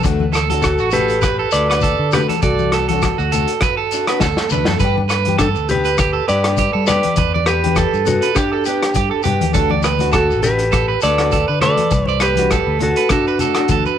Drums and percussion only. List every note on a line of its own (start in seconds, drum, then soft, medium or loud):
0.03 kick medium
0.03 closed hi-hat soft
0.03 shekere medium
0.20 high conga medium
0.33 cross-stick medium
0.33 closed hi-hat soft
0.33 shekere medium
0.50 closed hi-hat soft
0.50 high conga medium
0.62 kick medium
0.62 cross-stick medium
0.62 closed hi-hat soft
0.62 shekere medium
0.78 shekere soft
0.91 closed hi-hat soft
0.91 low conga medium
0.91 shekere medium
1.08 closed hi-hat soft
1.08 shekere soft
1.22 kick medium
1.22 cross-stick medium
1.22 closed hi-hat soft
1.22 shekere medium
1.51 closed hi-hat soft
1.51 shekere medium
1.71 cross-stick medium
1.71 closed hi-hat soft
1.81 kick medium
1.81 closed hi-hat soft
1.81 shekere medium
2.12 cross-stick medium
2.12 closed hi-hat soft
2.12 low conga medium
2.12 shekere medium
2.29 closed hi-hat soft
2.29 high conga medium
2.42 kick medium
2.42 closed hi-hat soft
2.42 shekere medium
2.58 high conga medium
2.58 shekere soft
2.72 cross-stick medium
2.72 closed hi-hat soft
2.89 closed hi-hat soft
2.89 high conga medium
3.02 kick medium
3.02 cross-stick medium
3.02 closed hi-hat soft
3.02 shekere medium
3.19 shekere soft
3.32 closed hi-hat soft
3.32 low conga medium
3.32 shekere medium
3.48 closed hi-hat soft
3.61 kick medium
3.61 cross-stick medium
3.61 closed hi-hat soft
3.61 shekere medium
3.91 closed hi-hat soft
3.91 shekere medium
4.07 cross-stick medium
4.07 closed hi-hat soft
4.07 shekere soft
4.20 kick medium
4.20 snare soft
4.20 high conga medium
4.20 shekere medium
4.37 snare soft
4.50 high conga medium
4.50 low conga medium
4.50 shekere medium
4.65 snare medium
4.65 high conga medium
4.80 kick medium
4.80 closed hi-hat soft
4.80 shekere medium
4.98 high conga medium
5.09 cross-stick medium
5.09 closed hi-hat soft
5.09 shekere medium
5.25 closed hi-hat soft
5.25 high conga medium
5.39 kick medium
5.39 cross-stick medium
5.39 closed hi-hat soft
5.39 shekere medium
5.55 shekere soft
5.69 closed hi-hat soft
5.69 low conga medium
5.69 shekere medium
5.84 closed hi-hat soft
5.84 shekere soft
5.98 kick medium
5.98 cross-stick medium
5.98 closed hi-hat soft
5.98 shekere medium
6.28 closed hi-hat soft
6.28 shekere medium
6.44 cross-stick medium
6.44 closed hi-hat soft
6.57 kick medium
6.57 closed hi-hat medium
6.57 shekere medium
6.87 cross-stick medium
6.87 closed hi-hat soft
6.87 low conga medium
6.87 shekere medium
7.03 closed hi-hat soft
7.03 high conga medium
7.16 kick medium
7.16 closed hi-hat medium
7.16 shekere medium
7.36 high conga medium
7.46 cross-stick medium
7.46 closed hi-hat soft
7.46 shekere medium
7.64 closed hi-hat soft
7.64 high conga medium
7.76 kick medium
7.76 cross-stick medium
7.76 closed hi-hat soft
7.76 shekere medium
7.94 shekere soft
8.06 closed hi-hat soft
8.06 low conga medium
8.06 shekere medium
8.22 closed hi-hat soft
8.22 shekere soft
8.36 kick medium
8.36 cross-stick medium
8.36 closed hi-hat soft
8.36 shekere medium
8.65 closed hi-hat soft
8.65 shekere medium
8.83 cross-stick medium
8.83 closed hi-hat soft
8.94 kick medium
8.94 closed hi-hat medium
8.94 shekere medium
9.23 closed hi-hat soft
9.23 low conga medium
9.23 shekere medium
9.41 closed hi-hat soft
9.41 high conga medium
9.54 kick medium
9.54 closed hi-hat soft
9.54 shekere medium
9.70 high conga medium
9.83 cross-stick medium
9.83 closed hi-hat soft
9.83 shekere medium
9.99 closed hi-hat soft
9.99 high conga medium
10.12 kick medium
10.12 cross-stick medium
10.12 closed hi-hat soft
10.12 shekere medium
10.31 shekere soft
10.42 closed hi-hat soft
10.42 low conga medium
10.42 shekere medium
10.59 closed hi-hat soft
10.59 shekere soft
10.72 kick medium
10.72 cross-stick medium
10.72 closed hi-hat soft
10.72 shekere medium
11.01 closed hi-hat soft
11.01 shekere medium
11.18 cross-stick medium
11.18 closed hi-hat soft
11.31 kick medium
11.31 closed hi-hat soft
11.31 shekere medium
11.61 cross-stick medium
11.61 closed hi-hat soft
11.61 low conga medium
11.77 closed hi-hat soft
11.77 high conga medium
11.91 kick medium
11.91 closed hi-hat soft
11.91 shekere medium
12.05 high conga medium
12.05 shekere soft
12.20 cross-stick medium
12.20 closed hi-hat soft
12.20 shekere medium
12.36 closed hi-hat medium
12.36 high conga medium
12.36 shekere soft
12.51 kick medium
12.51 cross-stick medium
12.51 closed hi-hat medium
12.51 shekere medium
12.80 closed hi-hat soft
12.80 low conga medium
12.96 closed hi-hat soft
13.09 kick medium
13.09 cross-stick medium
13.09 closed hi-hat medium
13.09 low conga medium
13.09 shekere medium
13.27 shekere soft
13.39 closed hi-hat soft
13.39 low conga medium
13.39 shekere medium
13.55 cross-stick medium
13.55 closed hi-hat soft
13.68 kick medium
13.68 closed hi-hat soft
13.68 high conga soft
13.68 shekere medium
13.86 shekere soft